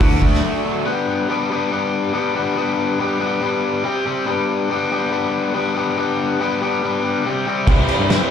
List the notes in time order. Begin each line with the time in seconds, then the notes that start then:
0.01 D2 D3 A3 D4 F#4, kick, open hi-hat
0.22 D2 A3, kick
0.34 snare
0.44 D3
0.65 F#3
0.85 G3 B3 D4 G4
1.28 G3 B3 D4 G4
1.50 G3 B3 D4 G4
1.71 G3 B3 D4 G4
2.13 G3 B3 D4 G4
2.35 G3 B3 D4 G4
2.57 G3 B3 D4 G4
2.99 G3 B3 D4 G4
3.20 G3 B3 D4 G4
3.41 G3 B3 D4 G4
3.83 C3 G3 C4 G4
4.05 C3 G3 C4 G4
4.26 G3 B3 D4 G4
4.70 G3 B3 D4 G4
4.91 G3 B3 D4 G4
5.11 G3 B3 D4 G4
5.54 G3 B3 D4 G4
5.75 G3 B3 D4 G4
5.97 G3 B3 D4 G4
6.40 G3 B3 D4 G4
6.61 G3 B3 D4 G4
6.83 G3 B3 D4 G4
7.25 C3 G3 C4 G4
7.47 C3 G3 C4 G4
7.67 C2 C3 E3 G3 C4 E4, kick, crash
7.88 crash
7.99 G2
8.10 C3 E3 G3 C4 E4, snare, crash